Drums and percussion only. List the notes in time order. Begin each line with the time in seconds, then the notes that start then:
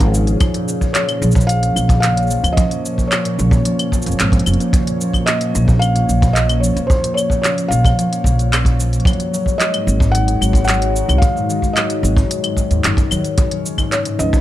0.00 kick, closed hi-hat, shaker
0.14 shaker
0.27 closed hi-hat, shaker
0.40 kick, closed hi-hat, claves, shaker
0.54 closed hi-hat, shaker
0.68 shaker
0.81 kick, shaker
0.95 clap, closed hi-hat, shaker
1.09 closed hi-hat, claves, shaker
1.22 shaker
1.31 kick, shaker
1.36 shaker
1.41 shaker
1.49 closed hi-hat, shaker
1.63 closed hi-hat, shaker
1.76 claves, shaker
1.89 kick, closed hi-hat, shaker
2.03 clap, closed hi-hat, shaker
2.17 closed hi-hat, shaker
2.22 shaker
2.27 shaker
2.31 shaker
2.44 closed hi-hat, claves, shaker
2.57 kick, closed hi-hat, shaker
2.71 closed hi-hat, shaker
2.86 shaker
2.98 kick, shaker
3.12 clap, closed hi-hat, claves, shaker
3.25 closed hi-hat, shaker
3.39 shaker
3.51 kick, shaker
3.65 closed hi-hat, shaker
3.79 closed hi-hat, claves, shaker
3.92 kick, shaker
4.02 shaker
4.06 closed hi-hat, shaker
4.11 shaker
4.20 clap, closed hi-hat, shaker
4.32 kick, closed hi-hat, shaker
4.39 closed hi-hat
4.46 closed hi-hat, claves, shaker
4.54 closed hi-hat
4.60 closed hi-hat, shaker
4.73 kick, closed hi-hat, shaker
4.87 closed hi-hat, shaker
5.01 shaker
5.13 kick, claves, shaker
5.27 clap, closed hi-hat, shaker
5.41 closed hi-hat, shaker
5.55 shaker
5.68 kick, shaker
5.82 closed hi-hat, claves, shaker
5.96 closed hi-hat, shaker
6.09 shaker
6.22 kick, closed hi-hat, shaker
6.36 clap, closed hi-hat, shaker
6.49 closed hi-hat, claves, shaker
6.64 shaker
6.77 closed hi-hat, shaker
6.90 kick, shaker
7.04 closed hi-hat, shaker
7.17 claves, shaker
7.30 kick, shaker
7.44 clap, closed hi-hat, shaker
7.58 closed hi-hat, shaker
7.72 shaker
7.85 kick, closed hi-hat, claves, shaker
7.99 closed hi-hat, shaker
8.13 closed hi-hat, shaker
8.24 kick, shaker
8.39 closed hi-hat, shaker
8.53 clap, closed hi-hat, claves, shaker
8.65 kick, closed hi-hat, shaker
8.80 shaker
8.93 closed hi-hat, shaker
9.00 closed hi-hat
9.05 kick, closed hi-hat, claves, shaker
9.13 closed hi-hat
9.20 closed hi-hat, shaker
9.34 shaker
9.46 kick, shaker
9.60 clap, closed hi-hat, shaker
9.74 closed hi-hat, claves, shaker
9.88 shaker
10.00 kick, shaker
10.15 closed hi-hat, shaker
10.28 closed hi-hat, shaker
10.42 claves, shaker
10.53 kick, closed hi-hat, shaker
10.65 clap, closed hi-hat, shaker
10.69 shaker
10.73 shaker
10.82 closed hi-hat, shaker
10.96 shaker
11.09 closed hi-hat, claves, shaker
11.22 kick, closed hi-hat, shaker
11.37 shaker
11.50 shaker
11.62 kick, shaker
11.77 clap, closed hi-hat, claves, shaker
11.90 closed hi-hat, shaker
12.04 shaker
12.17 kick, shaker
12.31 closed hi-hat, shaker
12.44 closed hi-hat, claves, shaker
12.57 kick, shaker
12.71 closed hi-hat, shaker
12.84 clap, closed hi-hat, shaker
12.97 kick, closed hi-hat, shaker
13.11 claves, shaker
13.24 closed hi-hat, shaker
13.38 kick, closed hi-hat, shaker
13.51 closed hi-hat
13.66 shaker
13.78 kick, claves, shaker
13.92 clap, closed hi-hat, shaker
14.05 closed hi-hat, shaker
14.20 shaker
14.33 kick, shaker